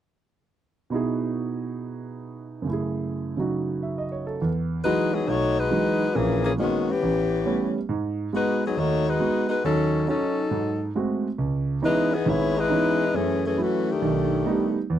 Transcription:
0.90 B2 B3 D#4 E4 F#4
0.95 G#4
2.62 F#2 C#3
2.67 A3 E4
2.73 G#4
3.37 C#3 F#3 D#4 F#4
3.83 E5
3.98 D#5
4.12 C#5
4.27 A4
4.42 E2
4.85 E3 F#3 G#3 D#4 F#4 B4
5.13 F#3 B3 D#4 G#4
5.28 B1 A3 D#4 F#4 C#5
5.59 G#3 D#4 F#4 B4
5.70 E3 F#3 G#3 D#4
6.15 A#1 A#2 E3 A#3 C#4 G#4
6.45 E3 A#3 C#4 G#4
6.58 D#3 G#3 A#3 B3 C#4 F#4
6.89 E3 B3 C#4 G4
7.03 A1
7.46 G3 A3 B3 C#4
7.89 G#2
8.33 G#3 B3 D#4 F#4 B4
8.66 F#3 B3 D#4 G#4
8.77 D#2 A3 D#4 F#4 C#5
9.08 G#3 D#4 F#4 B4
9.20 G#3 B3 F#4
9.49 G#3 D#4 F#4 B4
9.64 D#2 F#3 C#4 D#4 A4
10.07 F#3 C#4 D#4 F#4 A4
10.51 G#2
10.95 G#3 A3 C4 F#4
11.38 C#2
11.82 E3 G#3 B3 C#4 D#4 E4 B4
12.14 E3 B3 D#4 G#4
12.26 G#1 G#2 B3 E4 G#4 C#5
12.58 G#3 D#4 E4 B4
12.70 E3 B3 C#4 D#4
13.14 F#2 E3 A3 C#4 G#4
13.46 E3 A3 C#4 G#4
13.57 E3 F#3 A3 C#4 E4 F#4
13.90 D#3 A3 D4 G4
14.02 B1 D#3
14.45 G3 A3 B3 D#4
14.90 E2

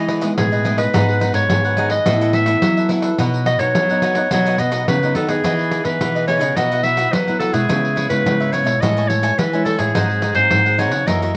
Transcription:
Already playing: E3 G#3 B3 D#4 D#5
0.08 E4 G#4 B4 D#5, pandeiro
0.21 G#3 B3 D#4 E4 G#4 B4 D#5, pandeiro
0.38 A2 B2 G#4, pandeiro
0.52 G#4 B4 D#5, pandeiro
0.64 G#3 B3 D#4 E4 G#4 B4 D#5, pandeiro
0.77 G#4 B4 D#5, pandeiro
0.94 G#2 F#3 B3 D#4 G#4 B4 F#5, pandeiro
1.09 pandeiro
1.20 F#3 B3 D#4 G#4 B4 F#5, pandeiro
1.34 G#2 C#5, pandeiro
1.50 G#2 D#3 F#3 B3 D#4, pandeiro
1.65 G#4 B4 F#5, pandeiro
1.77 F#3 B3 D#4 G#4 B4 F#5, pandeiro
1.90 G#4 B4 D#5 F#5, pandeiro
2.06 A2 E3 B3 E4 A4 B4 E5, pandeiro
2.21 E4 A4 B4 E5, pandeiro
2.33 E4 A4 B4 E5, pandeiro
2.46 E3 B3 E4 A4 B4 E5, pandeiro
2.62 E3 F#3, pandeiro
2.77 A4 B4 E5, pandeiro
2.89 E3 B3 E4 A4 B4 E5, pandeiro
3.02 A4 B4 E5, pandeiro
3.18 B2 F#3 B3 D#4 F#4 B4 D#5 F#5, pandeiro
3.34 pandeiro
3.46 F#4 B4 D#5 F#5, pandeiro
3.59 B2 F#3 B3 D#4 C#5, pandeiro
3.75 F#2 F#3, pandeiro
3.89 F#3 B3 D#4 B4 D#5 F#5, pandeiro
4.02 F#4 B4 D#5 F#5, pandeiro
4.15 F#3 B3 D#4 B4 D#5 F#5, pandeiro
4.31 B2 F#3 B3 D#4 F#4 B4 C#5 D#5 F#5, pandeiro
4.46 F#4 B4 D#5 F#5, pandeiro
4.58 B2 F#4 B4 D#5 F#5, pandeiro
4.71 F#3 B3 D#4 F#4 B4 D#5 F#5, pandeiro
4.88 F#2 C#3 B4, pandeiro
5.02 F#3 B3 D#4 B4 D#5 F#5, pandeiro
5.15 D#3 F#4 A4 B4 D#5 F#5, pandeiro
5.28 B3 D#4 G#4 B4 D#5 F#5, pandeiro
5.44 E3 E4 G#4 B4 D#5, pandeiro
5.59 pandeiro
5.71 E4 G#4 B4 D#5, pandeiro
5.85 E3 B3 D#4 G#4 B4, pandeiro
6.01 B2 E3, pandeiro
6.15 G#4 B4 D#5, pandeiro
6.27 B3 D#4 E4 G#4 B4 C#5 D#5, pandeiro
6.41 C#3 G#4 B4 D#5, pandeiro
6.57 B2 F#3 B3 E4 F#4 B4 D#5 E5 F#5, pandeiro
6.71 F#4 B4 E5 F#5, pandeiro
6.83 F#3 B3 E4 F#4 B4 E5 F#5, pandeiro
6.97 F#4 B4 E5 F#5, pandeiro
7.12 F#2 F#3 B4, pandeiro
7.27 F#3 B3 E4 B4 E5 F#5, pandeiro
7.40 F#4 A4 B4 E5 F#5, pandeiro
7.53 B2 G#3 B3 E4 G#4 B4 E5 F#5, pandeiro
7.69 C#3 E4 B4 C#5 E5, pandeiro
7.85 pandeiro
7.96 E4 B4 C#5 E5, pandeiro
8.10 C#3 G#3 B3 E4 B4, pandeiro
8.26 G#2 C#3, pandeiro
8.40 B4 C#5 E5, pandeiro
8.52 G#3 B3 E4 B4 C#5 E5, pandeiro
8.66 B2 B4 C#5 E5, pandeiro
8.81 A2 G#3 C#4 E4 A4 C#5 D#5 E5 G#5, pandeiro
8.97 A4 C#5 E5 G#5, pandeiro
9.08 G#3 C#4 E4 A4 C#5 E5 G#5, pandeiro
9.23 A4 C#5 E5 G#5, pandeiro
9.38 E3 B4, pandeiro
9.53 G#3 C#4 E4 C#5 E5 G#5, pandeiro
9.65 A4 C#5 E5 G#5, pandeiro
9.79 A2 G#4 C#5 E5 G#5, pandeiro
9.95 G#2 F#3 C4 D#4 G#4 C5 F#5, pandeiro
10.10 pandeiro
10.22 D#4 G#4 C5 F#5, pandeiro
10.35 G#2 F#3 C4 D#4 C5, pandeiro
10.51 G#2 D#3, pandeiro
10.66 G#4 C5 F#5, pandeiro
10.78 F#3 C4 D#4 G#4 C5 C#5 F#5, pandeiro
10.92 C#3 G#4 C5 F#5, pandeiro
11.07 F#2 E3 A#3 C#4 F#4 A#4 C#5 D#5 E5, pandeiro
11.22 F#4 A#4 C#5 E5, pandeiro

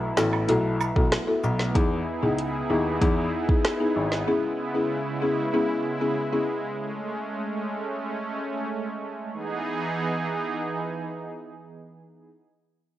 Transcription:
Already playing: A3 B3 E4
0.17 A1 B3 E4 F#4 A4, cross-stick, snare, cabasa
0.33 high woodblock
0.48 B1 B3 E4 F#4 A4, closed hi-hat
0.81 cabasa, high woodblock
0.96 B1 B3 E4 F#4 A4, kick
1.12 cross-stick, snare, closed hi-hat
1.27 B3 E4 F#4 A4
1.44 B1, cabasa
1.59 snare
1.75 E2 B3 D#4 E4 G#4, kick, closed hi-hat
2.22 C#2 B3 D#4 E4 G#4
2.38 closed hi-hat
2.69 D#2 B3 D#4 E4 G#4
3.01 E2 B3 D#4 E4 G#4, kick, closed hi-hat
3.48 B3 D#4 E4 G#4, kick
3.65 cross-stick, snare, closed hi-hat
3.80 B3 D#4 E4 G#4
3.96 G#1
4.12 snare
4.27 C#3 G#3 B3 C#4 E4 G#4
4.75 B3 C#4 E4 G#4
5.22 B3 C#4 E4 G#4
5.54 B3 C#4 E4 G#4
6.01 B3 C#4 E4 G#4
6.32 B3 C#4 E4 G#4
6.80 A3 C#4
9.33 E3 B3 D#4 G#4

